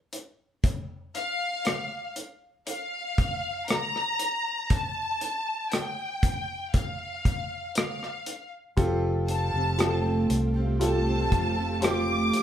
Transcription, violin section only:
1.16 2.13 F5 medium
2.68 3.66 F5 medium
3.70 4.71 A#5 medium
4.72 5.73 A5 medium
5.73 6.75 G5 medium
6.75 7.72 F5 medium
7.77 8.49 F5 medium
9.29 10.27 A5 medium
10.83 11.80 A5 medium
11.84 12.43 D6 medium

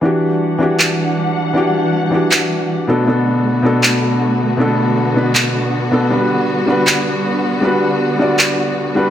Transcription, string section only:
0.04 2.85 E3 medium
0.04 2.86 G3 medium
0.04 2.85 D4 medium
0.04 2.86 F#5 medium
2.88 9.10 D3 medium
2.88 6.08 A3 medium
2.88 9.10 B3 medium
2.88 9.10 F#4 medium
6.11 9.10 G3 medium

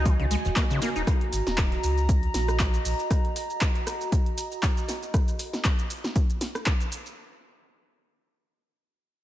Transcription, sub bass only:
0.00 0.36 C#2 medium
0.45 0.52 D#1 medium
0.96 1.03 D#1 medium
1.33 1.41 G#1 medium
1.47 1.76 D#1 loud
1.83 2.27 C#2 medium
2.34 2.78 A#1 loud
2.85 2.94 A#1 loud

